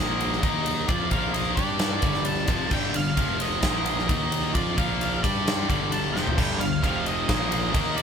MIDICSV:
0, 0, Header, 1, 5, 480
1, 0, Start_track
1, 0, Key_signature, -2, "minor"
1, 0, Tempo, 456621
1, 937, Time_signature, 4, 2, 24, 8
1, 8431, End_track
2, 0, Start_track
2, 0, Title_t, "Lead electric guitar"
2, 0, Program_c, 0, 29
2, 0, Note_on_c, 0, 75, 95
2, 894, Note_off_c, 0, 75, 0
2, 925, Note_on_c, 0, 74, 96
2, 1166, Note_off_c, 0, 74, 0
2, 1170, Note_on_c, 0, 77, 82
2, 1403, Note_off_c, 0, 77, 0
2, 1407, Note_on_c, 0, 75, 83
2, 1629, Note_off_c, 0, 75, 0
2, 1633, Note_on_c, 0, 74, 98
2, 2369, Note_on_c, 0, 81, 96
2, 2388, Note_off_c, 0, 74, 0
2, 2853, Note_off_c, 0, 81, 0
2, 2857, Note_on_c, 0, 79, 104
2, 3105, Note_on_c, 0, 77, 92
2, 3106, Note_off_c, 0, 79, 0
2, 3585, Note_off_c, 0, 77, 0
2, 3589, Note_on_c, 0, 75, 82
2, 4742, Note_off_c, 0, 75, 0
2, 4774, Note_on_c, 0, 74, 88
2, 5022, Note_off_c, 0, 74, 0
2, 5026, Note_on_c, 0, 77, 96
2, 5469, Note_off_c, 0, 77, 0
2, 5502, Note_on_c, 0, 74, 88
2, 5976, Note_off_c, 0, 74, 0
2, 5988, Note_on_c, 0, 74, 81
2, 6220, Note_on_c, 0, 81, 100
2, 6231, Note_off_c, 0, 74, 0
2, 6441, Note_off_c, 0, 81, 0
2, 6445, Note_on_c, 0, 79, 97
2, 6897, Note_off_c, 0, 79, 0
2, 6935, Note_on_c, 0, 77, 86
2, 7174, Note_off_c, 0, 77, 0
2, 7187, Note_on_c, 0, 77, 86
2, 7429, Note_off_c, 0, 77, 0
2, 7433, Note_on_c, 0, 75, 87
2, 8365, Note_off_c, 0, 75, 0
2, 8369, Note_on_c, 0, 74, 97
2, 8431, Note_off_c, 0, 74, 0
2, 8431, End_track
3, 0, Start_track
3, 0, Title_t, "Distorted electric guitar"
3, 0, Program_c, 1, 30
3, 0, Note_on_c, 1, 46, 84
3, 0, Note_on_c, 1, 53, 91
3, 0, Note_on_c, 1, 58, 107
3, 446, Note_off_c, 1, 46, 0
3, 446, Note_on_c, 1, 51, 92
3, 453, Note_off_c, 1, 53, 0
3, 453, Note_off_c, 1, 58, 0
3, 453, Note_on_c, 1, 58, 99
3, 461, Note_on_c, 1, 63, 102
3, 925, Note_off_c, 1, 51, 0
3, 928, Note_off_c, 1, 58, 0
3, 930, Note_on_c, 1, 53, 98
3, 932, Note_off_c, 1, 63, 0
3, 937, Note_on_c, 1, 60, 105
3, 943, Note_on_c, 1, 65, 97
3, 1166, Note_off_c, 1, 53, 0
3, 1170, Note_off_c, 1, 60, 0
3, 1170, Note_on_c, 1, 46, 84
3, 1173, Note_off_c, 1, 65, 0
3, 1180, Note_on_c, 1, 53, 88
3, 1187, Note_on_c, 1, 58, 99
3, 1644, Note_off_c, 1, 53, 0
3, 1647, Note_off_c, 1, 46, 0
3, 1649, Note_on_c, 1, 55, 96
3, 1654, Note_off_c, 1, 58, 0
3, 1658, Note_on_c, 1, 62, 100
3, 1667, Note_on_c, 1, 67, 108
3, 2127, Note_off_c, 1, 55, 0
3, 2127, Note_on_c, 1, 43, 85
3, 2131, Note_off_c, 1, 62, 0
3, 2136, Note_off_c, 1, 67, 0
3, 2139, Note_on_c, 1, 50, 93
3, 2144, Note_on_c, 1, 55, 109
3, 2603, Note_off_c, 1, 43, 0
3, 2608, Note_on_c, 1, 41, 89
3, 2612, Note_off_c, 1, 50, 0
3, 2615, Note_off_c, 1, 55, 0
3, 2620, Note_on_c, 1, 48, 105
3, 2621, Note_on_c, 1, 53, 105
3, 2846, Note_off_c, 1, 41, 0
3, 2851, Note_on_c, 1, 43, 101
3, 2852, Note_off_c, 1, 48, 0
3, 2853, Note_off_c, 1, 53, 0
3, 2864, Note_on_c, 1, 50, 114
3, 2865, Note_on_c, 1, 55, 111
3, 3077, Note_off_c, 1, 43, 0
3, 3078, Note_off_c, 1, 50, 0
3, 3089, Note_on_c, 1, 43, 60
3, 3091, Note_on_c, 1, 50, 66
3, 3095, Note_off_c, 1, 55, 0
3, 3287, Note_off_c, 1, 43, 0
3, 3287, Note_off_c, 1, 50, 0
3, 3327, Note_on_c, 1, 41, 89
3, 3335, Note_on_c, 1, 48, 99
3, 3340, Note_on_c, 1, 53, 94
3, 3804, Note_off_c, 1, 53, 0
3, 3806, Note_off_c, 1, 41, 0
3, 3810, Note_off_c, 1, 48, 0
3, 3810, Note_on_c, 1, 46, 89
3, 3816, Note_on_c, 1, 53, 88
3, 3822, Note_on_c, 1, 58, 104
3, 4281, Note_off_c, 1, 58, 0
3, 4286, Note_off_c, 1, 46, 0
3, 4290, Note_off_c, 1, 53, 0
3, 4290, Note_on_c, 1, 51, 91
3, 4294, Note_on_c, 1, 58, 94
3, 4300, Note_on_c, 1, 63, 95
3, 4768, Note_off_c, 1, 51, 0
3, 4770, Note_off_c, 1, 58, 0
3, 4773, Note_off_c, 1, 63, 0
3, 4773, Note_on_c, 1, 53, 90
3, 4781, Note_on_c, 1, 60, 107
3, 4788, Note_on_c, 1, 65, 102
3, 4998, Note_off_c, 1, 53, 0
3, 5002, Note_on_c, 1, 46, 92
3, 5009, Note_off_c, 1, 60, 0
3, 5014, Note_on_c, 1, 53, 90
3, 5017, Note_off_c, 1, 65, 0
3, 5021, Note_on_c, 1, 58, 92
3, 5476, Note_off_c, 1, 53, 0
3, 5480, Note_on_c, 1, 55, 88
3, 5483, Note_off_c, 1, 46, 0
3, 5488, Note_off_c, 1, 58, 0
3, 5493, Note_on_c, 1, 62, 102
3, 5503, Note_on_c, 1, 67, 107
3, 5962, Note_off_c, 1, 55, 0
3, 5969, Note_off_c, 1, 62, 0
3, 5974, Note_off_c, 1, 67, 0
3, 5974, Note_on_c, 1, 43, 83
3, 5978, Note_on_c, 1, 50, 93
3, 5986, Note_on_c, 1, 55, 99
3, 6446, Note_off_c, 1, 43, 0
3, 6450, Note_on_c, 1, 41, 85
3, 6451, Note_off_c, 1, 50, 0
3, 6455, Note_off_c, 1, 55, 0
3, 6463, Note_on_c, 1, 48, 94
3, 6464, Note_on_c, 1, 53, 103
3, 6687, Note_off_c, 1, 41, 0
3, 6693, Note_off_c, 1, 48, 0
3, 6693, Note_on_c, 1, 43, 101
3, 6694, Note_off_c, 1, 53, 0
3, 6704, Note_on_c, 1, 50, 107
3, 6713, Note_on_c, 1, 55, 110
3, 6919, Note_off_c, 1, 43, 0
3, 6926, Note_off_c, 1, 50, 0
3, 6932, Note_on_c, 1, 43, 57
3, 6938, Note_on_c, 1, 50, 74
3, 6939, Note_off_c, 1, 55, 0
3, 7127, Note_off_c, 1, 43, 0
3, 7130, Note_off_c, 1, 50, 0
3, 7169, Note_on_c, 1, 41, 92
3, 7178, Note_on_c, 1, 48, 98
3, 7187, Note_on_c, 1, 53, 96
3, 7646, Note_off_c, 1, 41, 0
3, 7650, Note_off_c, 1, 48, 0
3, 7651, Note_off_c, 1, 53, 0
3, 7655, Note_on_c, 1, 46, 96
3, 7663, Note_on_c, 1, 53, 99
3, 7671, Note_on_c, 1, 58, 89
3, 8119, Note_off_c, 1, 58, 0
3, 8121, Note_off_c, 1, 46, 0
3, 8125, Note_on_c, 1, 51, 98
3, 8128, Note_off_c, 1, 53, 0
3, 8132, Note_on_c, 1, 58, 100
3, 8144, Note_on_c, 1, 63, 102
3, 8431, Note_off_c, 1, 51, 0
3, 8431, Note_off_c, 1, 58, 0
3, 8431, Note_off_c, 1, 63, 0
3, 8431, End_track
4, 0, Start_track
4, 0, Title_t, "Fingered electric bass"
4, 0, Program_c, 2, 33
4, 0, Note_on_c, 2, 34, 96
4, 424, Note_off_c, 2, 34, 0
4, 453, Note_on_c, 2, 39, 99
4, 902, Note_off_c, 2, 39, 0
4, 936, Note_on_c, 2, 41, 89
4, 1160, Note_off_c, 2, 41, 0
4, 1172, Note_on_c, 2, 34, 92
4, 1622, Note_off_c, 2, 34, 0
4, 1657, Note_on_c, 2, 43, 96
4, 2105, Note_off_c, 2, 43, 0
4, 2131, Note_on_c, 2, 31, 87
4, 2582, Note_off_c, 2, 31, 0
4, 2610, Note_on_c, 2, 29, 96
4, 2838, Note_off_c, 2, 29, 0
4, 2851, Note_on_c, 2, 31, 92
4, 3078, Note_off_c, 2, 31, 0
4, 3086, Note_on_c, 2, 31, 81
4, 3315, Note_off_c, 2, 31, 0
4, 3341, Note_on_c, 2, 29, 96
4, 3787, Note_off_c, 2, 29, 0
4, 3813, Note_on_c, 2, 34, 97
4, 4263, Note_off_c, 2, 34, 0
4, 4308, Note_on_c, 2, 39, 97
4, 4750, Note_off_c, 2, 39, 0
4, 4787, Note_on_c, 2, 41, 92
4, 5007, Note_off_c, 2, 41, 0
4, 5029, Note_on_c, 2, 34, 101
4, 5471, Note_off_c, 2, 34, 0
4, 5510, Note_on_c, 2, 43, 101
4, 5951, Note_off_c, 2, 43, 0
4, 5986, Note_on_c, 2, 31, 89
4, 6429, Note_off_c, 2, 31, 0
4, 6461, Note_on_c, 2, 29, 90
4, 6683, Note_off_c, 2, 29, 0
4, 6707, Note_on_c, 2, 31, 85
4, 6926, Note_off_c, 2, 31, 0
4, 6939, Note_on_c, 2, 31, 76
4, 7162, Note_off_c, 2, 31, 0
4, 7185, Note_on_c, 2, 29, 88
4, 7628, Note_off_c, 2, 29, 0
4, 7661, Note_on_c, 2, 34, 93
4, 8106, Note_off_c, 2, 34, 0
4, 8143, Note_on_c, 2, 39, 89
4, 8431, Note_off_c, 2, 39, 0
4, 8431, End_track
5, 0, Start_track
5, 0, Title_t, "Drums"
5, 216, Note_on_c, 9, 51, 74
5, 321, Note_off_c, 9, 51, 0
5, 341, Note_on_c, 9, 38, 34
5, 446, Note_off_c, 9, 38, 0
5, 453, Note_on_c, 9, 51, 104
5, 454, Note_on_c, 9, 36, 104
5, 558, Note_off_c, 9, 51, 0
5, 559, Note_off_c, 9, 36, 0
5, 692, Note_on_c, 9, 51, 75
5, 797, Note_off_c, 9, 51, 0
5, 930, Note_on_c, 9, 51, 89
5, 934, Note_on_c, 9, 36, 107
5, 1035, Note_off_c, 9, 51, 0
5, 1039, Note_off_c, 9, 36, 0
5, 1167, Note_on_c, 9, 51, 71
5, 1173, Note_on_c, 9, 36, 96
5, 1272, Note_off_c, 9, 51, 0
5, 1278, Note_off_c, 9, 36, 0
5, 1410, Note_on_c, 9, 51, 92
5, 1515, Note_off_c, 9, 51, 0
5, 1652, Note_on_c, 9, 51, 67
5, 1653, Note_on_c, 9, 36, 101
5, 1757, Note_off_c, 9, 51, 0
5, 1758, Note_off_c, 9, 36, 0
5, 1885, Note_on_c, 9, 51, 89
5, 1890, Note_on_c, 9, 38, 108
5, 1990, Note_off_c, 9, 51, 0
5, 1995, Note_off_c, 9, 38, 0
5, 2123, Note_on_c, 9, 51, 70
5, 2131, Note_on_c, 9, 36, 109
5, 2228, Note_off_c, 9, 51, 0
5, 2237, Note_off_c, 9, 36, 0
5, 2250, Note_on_c, 9, 38, 30
5, 2355, Note_off_c, 9, 38, 0
5, 2362, Note_on_c, 9, 51, 98
5, 2467, Note_off_c, 9, 51, 0
5, 2602, Note_on_c, 9, 51, 75
5, 2610, Note_on_c, 9, 36, 102
5, 2707, Note_off_c, 9, 51, 0
5, 2715, Note_off_c, 9, 36, 0
5, 2847, Note_on_c, 9, 49, 93
5, 2852, Note_on_c, 9, 36, 100
5, 2953, Note_off_c, 9, 49, 0
5, 2957, Note_off_c, 9, 36, 0
5, 3092, Note_on_c, 9, 51, 74
5, 3197, Note_off_c, 9, 51, 0
5, 3334, Note_on_c, 9, 51, 92
5, 3336, Note_on_c, 9, 36, 99
5, 3439, Note_off_c, 9, 51, 0
5, 3441, Note_off_c, 9, 36, 0
5, 3573, Note_on_c, 9, 51, 78
5, 3678, Note_off_c, 9, 51, 0
5, 3811, Note_on_c, 9, 51, 95
5, 3816, Note_on_c, 9, 38, 107
5, 3817, Note_on_c, 9, 36, 101
5, 3916, Note_off_c, 9, 51, 0
5, 3921, Note_off_c, 9, 38, 0
5, 3923, Note_off_c, 9, 36, 0
5, 4054, Note_on_c, 9, 51, 82
5, 4159, Note_off_c, 9, 51, 0
5, 4191, Note_on_c, 9, 38, 33
5, 4296, Note_off_c, 9, 38, 0
5, 4302, Note_on_c, 9, 36, 112
5, 4302, Note_on_c, 9, 51, 108
5, 4407, Note_off_c, 9, 36, 0
5, 4407, Note_off_c, 9, 51, 0
5, 4542, Note_on_c, 9, 51, 79
5, 4647, Note_off_c, 9, 51, 0
5, 4782, Note_on_c, 9, 51, 97
5, 4784, Note_on_c, 9, 36, 103
5, 4887, Note_off_c, 9, 51, 0
5, 4889, Note_off_c, 9, 36, 0
5, 5023, Note_on_c, 9, 36, 108
5, 5023, Note_on_c, 9, 51, 76
5, 5128, Note_off_c, 9, 36, 0
5, 5129, Note_off_c, 9, 51, 0
5, 5267, Note_on_c, 9, 51, 86
5, 5373, Note_off_c, 9, 51, 0
5, 5508, Note_on_c, 9, 36, 107
5, 5514, Note_on_c, 9, 51, 79
5, 5613, Note_off_c, 9, 36, 0
5, 5619, Note_off_c, 9, 51, 0
5, 5755, Note_on_c, 9, 51, 100
5, 5760, Note_on_c, 9, 38, 115
5, 5860, Note_off_c, 9, 51, 0
5, 5865, Note_off_c, 9, 38, 0
5, 5987, Note_on_c, 9, 36, 101
5, 5993, Note_on_c, 9, 51, 72
5, 6093, Note_off_c, 9, 36, 0
5, 6098, Note_off_c, 9, 51, 0
5, 6224, Note_on_c, 9, 51, 97
5, 6329, Note_off_c, 9, 51, 0
5, 6473, Note_on_c, 9, 38, 65
5, 6578, Note_off_c, 9, 38, 0
5, 6595, Note_on_c, 9, 43, 91
5, 6700, Note_off_c, 9, 43, 0
5, 6707, Note_on_c, 9, 36, 107
5, 6711, Note_on_c, 9, 49, 91
5, 6812, Note_off_c, 9, 36, 0
5, 6816, Note_off_c, 9, 49, 0
5, 6947, Note_on_c, 9, 51, 76
5, 7053, Note_off_c, 9, 51, 0
5, 7185, Note_on_c, 9, 36, 95
5, 7189, Note_on_c, 9, 51, 95
5, 7290, Note_off_c, 9, 36, 0
5, 7294, Note_off_c, 9, 51, 0
5, 7424, Note_on_c, 9, 51, 73
5, 7529, Note_off_c, 9, 51, 0
5, 7663, Note_on_c, 9, 36, 99
5, 7663, Note_on_c, 9, 51, 102
5, 7668, Note_on_c, 9, 38, 108
5, 7768, Note_off_c, 9, 36, 0
5, 7768, Note_off_c, 9, 51, 0
5, 7773, Note_off_c, 9, 38, 0
5, 7903, Note_on_c, 9, 51, 78
5, 8008, Note_off_c, 9, 51, 0
5, 8141, Note_on_c, 9, 36, 109
5, 8141, Note_on_c, 9, 51, 109
5, 8246, Note_off_c, 9, 51, 0
5, 8247, Note_off_c, 9, 36, 0
5, 8385, Note_on_c, 9, 51, 77
5, 8431, Note_off_c, 9, 51, 0
5, 8431, End_track
0, 0, End_of_file